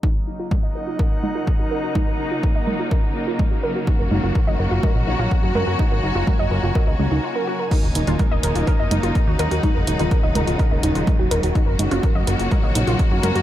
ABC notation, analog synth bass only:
X:1
M:4/4
L:1/16
Q:1/4=125
K:Ebm
V:1 name="Analog synth bass" clef=bass
z16 | z16 | z G,,, G,,, G,,, z G,,, G,,, G,,, z B,,, B,,, B,,, z G,, G,, G,, | z A,,, G,,, G,,, z G,,, G,,, G,,, z D,, D,, D,, z4 |
z E,,, E,,, E,,, z E,,, E,,, E,,, z G,,, G,,, G,,, z E,, E,, E,, | z F,,, E,,, E,,, z E,,, E,,, E,,, z E,,, E,,, E,,, z E,,, E,,, E,,, | z G,,, G,,, G,,, z G,,, G,,, G,,, z B,,, B,,, B,,, z G,, G,, G,, |]